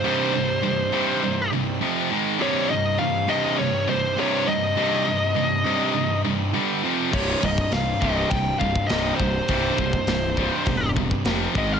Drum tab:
CC |----------------|----------------|----------------|x---------------|
HH |----------------|----------------|----------------|----o---o---o---|
SD |----------------|----------------|----------------|----o-------o---|
BD |----------------|----------------|----------------|o-oo--o-o-oo--o-|

CC |----------------|
HH |o---o---o---o---|
SD |----o-------o---|
BD |o-oo--o-o-oo--o-|